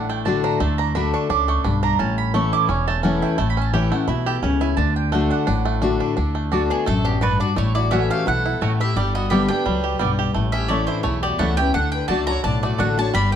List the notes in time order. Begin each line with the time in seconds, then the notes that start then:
Already playing: A1 A2 D4
0.09 A3 G5
0.25 D3 A3 D4 F#4 A5
0.44 D4 A#5
0.60 D2 D3 A3 A5
0.78 D4 A#5
0.95 D3 A3 D4 F#4 B5
1.14 D4 C#6
1.29 C#2 C#4 D4 D6
1.48 A3 C#6
1.64 B1 G2 D4 B5
1.83 D4 A#5
1.99 A1 A2 C#4 A5
2.18 B5
2.34 E3 A3 C#4 E4 C#6
2.53 E4 D6
2.69 E1 E2 C#4 C#6
2.88 A3 A5
3.03 E3 A3 C#4 E4 F#5
3.22 E4 G5
3.38 A1 A2 A3 A5
3.50 B5
3.57 C#4
3.62 A5
3.73 E3 A3 C#4 E4 G4 G5
3.92 A3 C#4 E4 F#5
4.08 B1 B2 E4 E5
4.26 G4 A4
4.43 C#2 C#3 C#4
4.61 E4 G#5
4.77 D2 D3 D4 A5
4.96 G5
5.12 D3 A3 D4 F#4 F#5
5.31 D4 F#5
5.47 A1 A2 D4
5.65 A3
5.82 D3 A3 D4 F#4
6.00 D4
6.17 D2 D3 D4
6.35 A3
6.52 D3 A3 D4 F#4 D5 A5
6.70 B3 D4 G#4
6.86 A1 F#2 A3 D4 A4
7.05 B3 D4 G4
7.21 G2 A3 D4 F#4 B4 D5 A5
7.40 D4 F#4 D5
7.56 A1 A2 A3 E4 C#5
7.75 E4 F#4 D5
7.91 E3 A3 C#4 F#4 A4 C#5 E5 F#5
8.10 A3 G4 F5
8.26 B1 B2 E4 A4 F#5
8.46 E4
8.61 A1 A2 A3 F#4 C#5 F#5
8.80 E4 G4 E5
8.96 G1 G2 G3 G4 D5
9.14 B3 F#4 D#5
9.30 D3 G3 B3 G4 D5 E5 G5
9.48 B3 D4 G4 B4 G5
9.66 C#2 F#3 G3
9.84 G4
9.99 B1 G2 G3 B3 G4 D5 G5
10.19 G4
10.34 A1 A2 A3
10.52 C#4 G4 E5
10.68 E3 A3 C#4 E4 A4 C#5 D5 A5
10.87 D4 E4 C5
11.03 B1 E2 A3 E4 C#5
11.23 F#4 G4 D5
11.38 C#2 E3 A3 C#4 E4 A4 C#5 F#5 A5
11.57 C#4 E4 G4 B4 G5
11.74 D2 D3 D4 A4 F#5
11.92 B4 G5
12.08 C#2 D3 A3 D4 F#4 D5 A5
12.27 D3 D4 F#4 C#5 A#5
12.44 B1 A2 D4 D5 A5
12.63 A3 F#4 D5
12.78 A1 D3 A3 D4 F#4 A4 D5 F#5 A5
12.97 D4 F#4 C#5 A5
13.14 G1 G2 G3 D5 B5
13.32 B4 G5